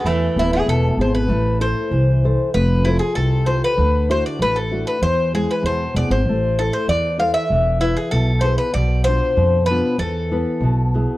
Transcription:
X:1
M:2/4
L:1/16
Q:1/4=97
K:Am
V:1 name="Bouzouki"
A,2 E ^G A2 c B- | B2 c6 | B2 E ^G A2 c B- | B2 c d B A2 B |
c2 ^G B c2 d c- | c2 A c d2 f e- | e2 E ^G A2 c B | d2 c4 B2 |
A6 z2 |]
V:2 name="Nylon-string guitar"
E,2 [B,EB]2 B,,2 [B,E^G]2 | A,2 [EAc]2 E,2 [EAc]2 | F,2 [FAc]2 C,2 [FAc]2 | D,2 [DE^F]2 A,2 [DEF]2 |
E,2 [^G,E^G]2 B,,2 [B,EG]2 | A,2 [EAc]2 E,2 [EAc]2 | E,2 [EB]2 B,,2 [E^GB]2 | B,,2 [DF]2 B,,2 [B,DF]2 |
E,2 [B,EB]2 B,,2 [B,E^G]2 |]
V:3 name="Bouzouki" clef=bass
E,6 z2 | z8 | z8 | z8 |
z8 | z8 | z8 | z8 |
z8 |]
V:4 name="Upright bass" clef=bass
E,,2 D,,,2 E,,,2 ^G,,,2 | A,,,4 C,,4 | F,,,4 C,,4 | D,,4 A,,,4 |
E,,4 E,,2 E,,, ^G,,, | A,,,4 E,,4 | E,,,4 B,,,4 | B,,,4 F,,4 |
E,,4 B,,,4 |]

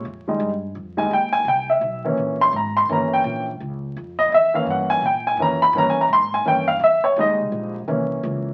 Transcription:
X:1
M:4/4
L:1/8
Q:"Swing" 1/4=168
K:Cphr
V:1 name="Grand piano"
z4 z a g a | g =e2 z2 c' b c' | b g2 z4 e | [e=e] f _g a =g a b =b |
(3b a b c' a g f =e d | e z6 z |]
V:2 name="Grand piano"
z [G,A,E] z3 [G,A,E] z2 | z3 [=E,B,D]3 z2 | [=E,B,D]3 z4 z | z [=E,B,D]3 z2 [E,B,D] z |
[=E,B,D] z3 [E,B,D] z3 | [G,A,E]3 z [=E,B,D]4 |]
V:3 name="Upright bass" clef=bass
F,,2 G,,2 F,,2 E,,2 | C,,2 =B,,,2 _B,,,2 A,,,2 | G,,,2 B,,,2 D,,2 F,,2 | =E,,2 G,,2 B,,2 F,,2 |
G,, z A,,2 G,,2 =E,, z | (3F,, E,, C,, B,,,2 C,,2 D,,2 |]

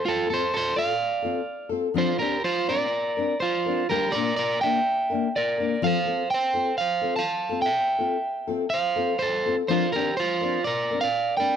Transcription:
X:1
M:4/4
L:1/16
Q:"Swing 16ths" 1/4=124
K:F
V:1 name="Clean electric guitar"
[FA]2 [Ac]2 [Ac]2 [df]8 z2 | [Fc]2 [GB]2 [Fc]2 [Bd]6 [Fc]4 | [GB]2 [Bd]2 [Bd]2 [eg]6 [Bd]4 | [cf]4 [cg]4 [cf]3 [fa]4 [eg]- |
[eg]8 [cf]4 [Ac]3 z | [Fc]2 [GB]2 [Fc]4 [Bd]3 [df]3 [dg]2 |]
V:2 name="Steel-string acoustic guitar"
z2 [CFA]2 z2 [FA]2 z2 [CFA]2 z2 [CFA]2 | [F,CD]2 [CDB]2 z2 [CD]2 z2 [CDB]2 z2 [CDB]2 | [G,B,DB]2 [B,DB]2 z2 [B,D]2 z2 [B,DB]2 z2 [B,DB]2 | [F,CFA]2 [CFA]2 z2 [CFA]2 z2 [CFA]2 z2 [CFA]2 |
z2 [CFA]2 z2 [CFA]2 z2 [CFA]2 z2 [CFA]2 | [F,CDB]2 [CDB]2 z2 [CDB]2 z2 [CDB]2 z2 [CDB]2 |]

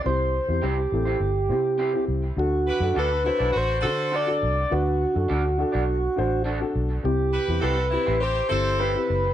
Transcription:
X:1
M:4/4
L:1/16
Q:1/4=103
K:Clyd
V:1 name="Tonewheel organ"
c4 G8- G2 z2 | F4 B4 c4 d4 | F12 z4 | G4 B4 c4 B4 |]
V:2 name="Clean electric guitar"
z4 [CEGc] z2 [CEGc] z4 [CEGc] z3 | z4 [DFAd] z2 [DFAd] z4 [DFAd] z3 | z4 [DFAd] z2 [DFAd] z4 [DFAd] z3 | z4 [CEGc] z2 [CEGc] z4 [CEGc] z3 |]
V:3 name="Saxophone section"
z16 | z2 [EGB]2 [DFA]2 [A,CE]2 [A,DF]2 [DFA]4 z2 | z16 | z2 [EGB]2 [DFA]2 [G,CE]2 [CEG]2 [CEA]4 z2 |]
V:4 name="Upright piano"
[CEG]2 z [CEG]2 z [CEA]2 z2 [CEG]2 z [CEG]2 z | [DFA]2 z [DFA]2 z [DFc]2 z2 [DFA]2 z [DFA]2 z | [DFB]2 z [DFA]2 z [DFA]2 z2 [DFc]2 z [DFA]2 z | [CEG]2 z [CEG]2 z [CEG]2 z2 [CEG]2 z [CEG]2 z |]
V:5 name="Upright piano" clef=bass
C,6 z8 z2 | D,6 z8 z2 | D,6 z8 z2 | C,6 z8 z2 |]
V:6 name="Fingered electric bass" clef=bass
C,,3 E,, C,,2 A,,,2 G,,,2 C,4 C,,2 | D,,3 F,, D,,3 B,,, A,,,2 D,4 C,,2 | D,,3 F,, D,,3 B,,,3 A,,,4 B,,,2 | C,,3 E,, C,,3 A,,,3 G,,,4 F,,,2 |]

